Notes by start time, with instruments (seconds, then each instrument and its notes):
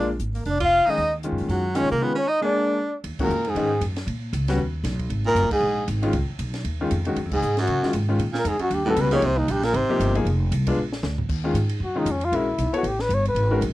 Already playing: upright bass A#1
0.20 upright bass G#1, closed hi-hat
0.34 baritone saxophone A#3, open hi-hat
0.39 muted trumpet A#4
0.45 upright bass F1, baritone saxophone D4, open hi-hat
0.50 muted trumpet D5
0.60 baritone saxophone F4, kick, ride
0.64 muted trumpet F5
0.86 grand piano D#3 G#3 C#4 G#4, baritone saxophone D#4, muted trumpet D#5, muted upright bass stroke, open hi-hat
0.98 upright bass D#2, open hi-hat
1.23 grand piano D#3 G#3 C#4 F4, closed hi-hat
1.32 upright bass F#2
1.38 upright bass A#2, open hi-hat
1.48 upright bass F#2, baritone saxophone F#3, muted trumpet F#4, open hi-hat
1.75 grand piano D#3 G#3 C#4 F4, baritone saxophone C#4, cross-stick, closed hi-hat
1.79 upright bass A#2, muted trumpet C#5
1.89 upright bass C3, baritone saxophone A#3, muted trumpet A#4, open hi-hat
2.01 grand piano D#3 G#3 C#4 F4, baritone saxophone B3, muted trumpet B4
2.15 baritone saxophone C#4, muted trumpet C#5
2.27 baritone saxophone D#4, muted trumpet D#5
2.41 grand piano G#3 A#3 D4 G#4, baritone saxophone D4, muted trumpet D5
3.04 upright bass D#2, ride
3.19 baritone saxophone A#2, grand piano D#3 G#3 C#4 F#4, muted trumpet A#4, muted upright bass stroke, kick, crash
3.28 upright bass F2, hi-hat pedal
3.45 baritone saxophone G#2, ride
3.50 muted trumpet G#4
3.55 upright bass G#2, grand piano D#3 G#3 C#4 D#4, ride
3.81 upright bass F#2, hi-hat pedal, ride
3.96 snare, ride
4.07 upright bass A#2, ride
4.33 upright bass C#2, hi-hat pedal, ride
4.48 grand piano G3 B3 C#4 F#4, snare, ride
4.57 upright bass D#2
4.84 upright bass B1, snare, hi-hat pedal, ride
4.99 kick, ride
5.10 upright bass G#1, ride
5.26 baritone saxophone A#2, muted trumpet A#4
5.35 upright bass F#1, hi-hat pedal, ride
5.50 baritone saxophone G#2, muted trumpet G#4, muted upright bass stroke, kick, crash
5.61 upright bass A#1
5.88 upright bass G#1, hi-hat pedal, ride
6.03 grand piano D#3 G#3 C#4 F4, ride
6.13 upright bass C#2, ride
6.29 muted upright bass stroke
6.39 upright bass B1, hi-hat pedal, ride
6.54 snare, ride
6.64 upright bass D#2, ride
6.81 grand piano D#3 G#3 C#4 F4
6.91 upright bass F2, hi-hat pedal, ride
7.05 grand piano D#3 G#3 C#4 F#4, ride
7.16 upright bass F#2, ride
7.25 upright bass F2
7.32 upright bass C#2, baritone saxophone G#2, muted trumpet G#4, kick, crash
7.42 upright bass G#2, hi-hat pedal
7.57 baritone saxophone F#2, muted trumpet F#4, snare, ride
7.67 upright bass C#3, ride
7.83 grand piano D#3 G#3 C#4 F4, muted upright bass stroke, snare
7.93 upright bass G#2, hi-hat pedal, ride
8.09 grand piano D#3 G#3 C#4 F4
8.19 upright bass A#2, ride
8.33 baritone saxophone A#2, snare
8.38 muted trumpet A#4
8.45 upright bass F2, baritone saxophone G#2, muted trumpet G#4, hi-hat pedal, ride
8.59 baritone saxophone F#2, muted trumpet F#4, muted upright bass stroke, ride
8.71 upright bass D#2, baritone saxophone G2, muted trumpet G4, ride
8.85 baritone saxophone A2, grand piano G3 B3 C#4 F#4
8.89 muted trumpet A4
8.96 upright bass C#2, baritone saxophone B2, hi-hat pedal, ride
9.01 muted trumpet B4
9.11 baritone saxophone C#3, grand piano F3 A#3 D#4 G4, muted trumpet C#5, ride
9.22 upright bass C2, baritone saxophone C3, muted trumpet C5, ride
9.37 baritone saxophone D#2, muted trumpet D#4
9.48 upright bass A#1, baritone saxophone G2, muted trumpet G4, hi-hat pedal, ride
9.63 baritone saxophone A#2, muted trumpet A#4, snare, ride
9.74 upright bass G#1, baritone saxophone C3, muted trumpet C5, ride
9.89 grand piano F3 A#3 D#4 G4, muted upright bass stroke
9.99 upright bass G1, hi-hat pedal, ride
10.15 grand piano F3 A#3 D#4 G#4, ride
10.25 upright bass F1, ride
10.52 upright bass C2, hi-hat pedal, ride
10.67 grand piano G#3 B3 D4 F4, kick, ride
10.77 upright bass A#1
10.93 snare
11.03 upright bass D2, snare, hi-hat pedal
11.18 floor tom
11.29 upright bass D#2, kick, crash
11.44 grand piano D#3 G#3 C#4 F4
11.54 upright bass G#2, hi-hat pedal, ride
11.69 ride
11.80 upright bass F#2, muted trumpet F#4
11.95 grand piano D#3 G#3 C#4 F4, muted trumpet D#4
12.06 upright bass F2, hi-hat pedal, ride
12.11 muted trumpet C#4
12.21 muted trumpet F4, ride
12.32 upright bass A#1, grand piano G#3 C#4 F#4 A#4, muted trumpet E4, ride
12.58 upright bass B1, hi-hat pedal, ride
12.72 grand piano B3 E4 A4 C#5, muted trumpet F#4, muted upright bass stroke, ride
12.83 upright bass A1, muted trumpet G4, ride
12.99 muted trumpet B4, snare
13.09 upright bass G1, hi-hat pedal, ride
13.14 muted trumpet C#5
13.25 muted trumpet B4, ride
13.35 upright bass G#1, ride
13.51 grand piano G#3 C#4 F#4 A#4
13.61 upright bass A#1, hi-hat pedal, ride